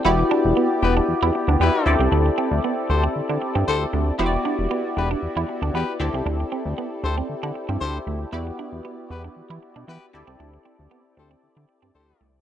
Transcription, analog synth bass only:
\new Staff \with { instrumentName = "Analog synth bass" } { \clef bass \time 4/4 \key d \mixolydian \tempo 4 = 116 e,,8 r16 e,,16 r8 e,,8 e,16 e,16 r16 d,16 e,16 r16 d,16 c,16 | d,8 r16 d,16 r8 d,8 d16 d16 r16 g,16 d,8 d,8 | e,,8 r16 e,,16 r8 e,,8 e,16 e,16 r16 d,16 e,16 r16 d,16 c,16 | d,8 r16 d,16 r8 d,8 d16 d16 r16 g,16 d,8 d,8 |
e,8 r16 e,16 r8 e,8 e16 e16 r16 b,16 e16 r16 d,16 c,16 | d,8 r16 d,16 r8 d,8 d16 d16 r16 g,16 d,8 c,8 | }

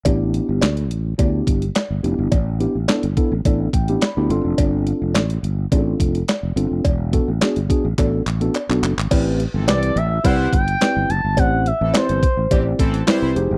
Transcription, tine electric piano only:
\new Staff \with { instrumentName = "Tine electric piano" } { \time 4/4 \key a \minor \tempo 4 = 106 << { r1 | r2 r8 g''8 b''8 c'''8 | r1 | r1 |
\key a \dorian r1 | r1 | } \\ { <b d' e' g'>4 r4 <b d' e' g'>8. r8. <b d' e' g'>8 | r8 <b d' e' g'>16 r16 <b d' e' a'>16 r16 <b d' e' a'>16 r16 <b d' e' a'>8 r16 <b d' e' g'>16 r16 <b d' e' g'>16 <c' d' f' a'>8~ | <c' d' f' a'>4 r4 <c' d' f' gis' a'>8. r8. <c' d' f' a'>8 | r8 <b d' fis' a'>16 r16 <b d' fis' gis'>16 r16 <b d' fis' gis'>16 r16 <b d' fis' a'>8 r16 <b d' fis' a'>16 r16 <b d' fis' a'>8 r16 |
<c' e' g' b'>8 r8 <c' e' g' b'>8 r8 <c' e' g' b'>8 r8 <c' e' g' b'>8 r8 | <c' e' g' c''>8 r8 <c' e' g' b'>8 r8 <c' e' g' d''>8 r8 <c' e' g' b'>8 <ees' g' aes' c''>8 | } >> }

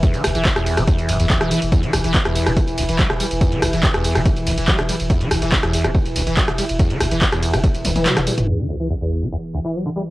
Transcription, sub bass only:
\new Staff \with { instrumentName = "Sub bass" } { \clef bass \time 4/4 \key e \minor \tempo 4 = 142 r16 e,,16 e,,16 e,,16 r16 e,,16 r16 e,,16 r16 e,,16 e,,16 e,,16 r16 e,,16 r16 e,,16 | r16 e,,16 e,,16 e,,16 r16 e,,16 r16 e,,16 r16 e,,16 e,,16 e,,16 r16 e,,16 r16 e,,16 | r16 e,,16 e,,16 e,,16 r16 e,,16 r16 e,,16 r16 e,,16 e,,16 e,,16 r16 e,,16 r16 e,,16 | r16 e,,16 e,,16 e,,16 r16 e,,16 r16 e,,16 r16 e,,16 e,,16 e,,16 r16 e,,16 r16 e,,16 |
r16 e,,16 e,,16 e,,16 r16 e,,16 r16 e,,16 r16 e,,16 e,,16 e,,16 r16 e,,16 r16 e,,16 | r1 | }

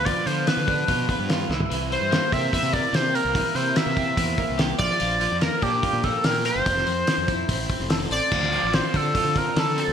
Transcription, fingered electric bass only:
\new Staff \with { instrumentName = "Fingered electric bass" } { \clef bass \time 4/4 \key d \minor \tempo 4 = 145 d,16 r16 d8 r16 d8. b,8 r16 g,8. c,16 r16 | c,8. g,8 r16 c8 r16 c8 r16 c8. c,16~ | c,16 r16 c8 r16 c8. e,8 r16 c,8. bes,,16 r16 | bes,,8. f,8 r16 bes,8 r16 bes,8 r16 bes,8. fis,,16 |
f,,8 f,8 r16 f,8. a,,8 r16 f,,8. a,,16 r16 | d,8. a,,8 r16 d8 r16 d8 r16 d8. d,16 | }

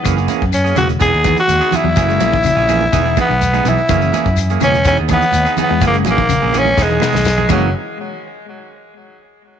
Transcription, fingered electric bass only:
\new Staff \with { instrumentName = "Fingered electric bass" } { \clef bass \time 4/4 \key fis \mixolydian \tempo 4 = 125 fis,,8 r16 fis,8. e,,8 e,,16 dis,8 r16 dis,16 r8 e,16 | fis,,8 ais,,8. ais,,8. e,,8 r16 b,,8. b,,16 r16 | fis,,8 r16 fis,8. e,,8 e,,16 dis,8 r16 dis,16 r8 e,16 | fis,,8 ais,,8. ais,,8. e,,8 r16 b,,8. fis,,8 |
r1 | }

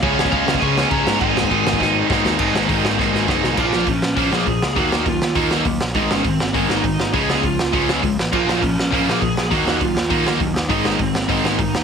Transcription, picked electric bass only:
\new Staff \with { instrumentName = "Picked electric bass" } { \clef bass \time 4/4 \key aes \mixolydian \tempo 4 = 202 des,8 des,8 des,8 des,8 des,4 des,8 aes,8 | aes,,8 aes,,8 aes,,8 aes,,8 aes,,4 aes,,8 ees,8 | aes,,8 aes,,8 aes,,8 aes,,8 aes,,8 aes,,8 ges,,8 c,8 | bes,,8 bes,,8 bes,,8 bes,,8 bes,,8 bes,,8 bes,,8 des,8 |
ees,8 ees,8 ees,8 ees,8 ees,8 ees,8 ees,8 bes,,8 | aes,,8 aes,,8 aes,,8 aes,,8 aes,,8 aes,,8 aes,,8 aes,,8 | des,8 des,8 des,8 des,8 des,8 des,8 des,8 a,,8 | bes,,8 bes,,8 bes,,8 bes,,8 bes,,8 bes,,8 bes,,8 bes,,8 |
ees,8 ees,8 ees,8 ees,8 ees,8 ees,8 ees,8 ees,8 | aes,,8 aes,,8 aes,,8 aes,,8 aes,,8 aes,,8 aes,,8 ees,8 | }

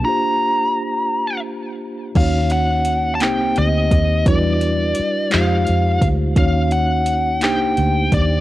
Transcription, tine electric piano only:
\new Staff \with { instrumentName = "Tine electric piano" } { \time 6/8 \key c \major \tempo 4. = 57 <bes d' f' g' c''>2. | <bes des' ees' ges' des''>4. <bes c' ees' g' c''>4. | <fis g d' e' fis' b'>4. <aes ees' f' g' c''>4. | <bes des' ees' ges' des''>4. <bes d' ees' g' c''>4. | }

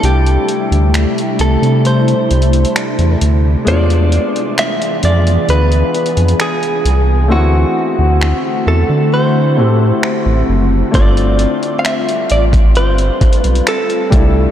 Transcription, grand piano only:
\new Staff \with { instrumentName = "Grand piano" } { \time 4/4 \key g \mixolydian \tempo 4 = 66 <g a d' e'>2.~ <g a d' e'>8 r8 | <gis b d' f'>1 | <a c' e' fis'>2~ <a c' e' fis'>8 <a c' e' g' a'>4. | <a c' d' f'>2.~ <a c' d' f'>8 <g a d' e'>8 | }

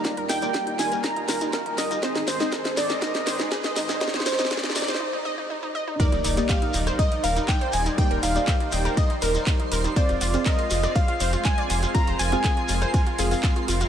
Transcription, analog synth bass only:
\new Staff \with { instrumentName = "Analog synth bass" } { \clef bass \time 4/4 \key ees \major \tempo 4 = 121 r16 ees,,16 ees,,16 r8. ees,,16 r8. ees,,16 r8. ees,,16 r16 | r16 aes,,16 aes,,16 r8. aes,,16 r8. aes,,16 r8. aes,,16 r16 | r16 aes,,16 aes,,16 r8. aes,,16 r2 r16 | r16 ees,,16 ees,,16 r8. ees,,16 r8. ees,,16 r8. ees,,16 r16 |
r16 ees,,16 ees,,16 r8. ees,,16 r8. ees,,16 r8. ees,,16 r16 | r16 f,,16 f,,16 r8. f,,16 r8. f,,16 r8. f,,16 r16 | r16 f,,16 f,,16 r8. f,,16 r8. f,,16 r8. f,,16 r16 | }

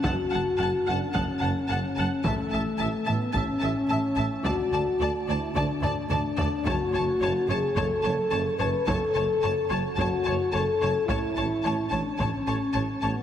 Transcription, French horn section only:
\new Staff \with { instrumentName = "French horn section" } { \time 4/4 \key fis \minor \tempo 4 = 109 fis'4. d'8 cis'4 cis'4 | a4. b8 cis'2 | fis'4. e'8 d'4 d'4 | fis'4. gis'8 a'4. b'8 |
a'4. fis'8 fis'4 a'4 | e'4. d'8 cis'4. b8 | }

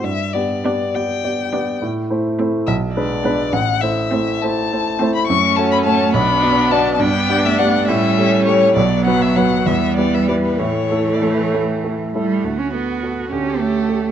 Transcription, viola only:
\new Staff \with { instrumentName = "Viola" } { \time 6/8 \key a \dorian \tempo 4. = 68 r4 d'8 r4 d'8 | r4 c'8 r4 b8 | r4 c'8 r4 c'8 | \key a \mixolydian cis'4. d'4. |
d'4. cis'4. | b4. b4. | a2~ a8 r8 | fis'4. g'4. | }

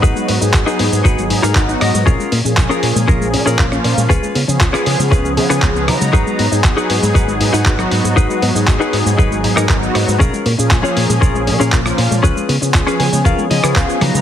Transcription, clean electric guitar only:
\new Staff \with { instrumentName = "Clean electric guitar" } { \time 4/4 \key gis \dorian \tempo 4 = 118 << { r2. fis''8 dis''8 | r1 | r1 | r1 |
r1 | r1 | r4. gis''8 eis''8 dis''8 eis''4 | } \\ { <dis' fis' gis' b'>8 r8. <dis' fis' gis' b'>16 r8 <dis' fis' gis' b'>8 r16 <dis' fis' gis' ais'>16 r4 | <cis' eis' gis' ais'>8 r8. <cis' eis' gis' ais'>16 r8 <cis' eis' gis' ais'>8 r16 <cis' eis' gis' ais'>16 r4 | <cis' eis' gis' b'>8 r8. <cis' eis' gis' b'>16 r8 <cis' eis' gis' b'>8 r16 <cis' eis' gis' b'>16 r4 | <dis' fis' gis' b'>8 r8. <dis' fis' gis' b'>16 r8 <dis' fis' gis' b'>8 r16 <dis' fis' gis' b'>16 r4 |
<dis' fis' gis' b'>8 r8. <dis' fis' gis' b'>16 r8 <dis' fis' gis' b'>8 r16 <dis' fis' gis' ais'>16 r4 | <cis' eis' gis' ais'>8 r8. <cis' eis' gis' cis''>16 r8 <cis' eis' gis' ais'>8 r16 <cis' eis' gis' ais'>16 r4 | <cis' eis' gis' b'>8 r8. <cis' eis' gis' b'>16 r8 <cis' eis' gis' ais'>8 r16 <cis' eis' gis' b'>16 r4 | } >> }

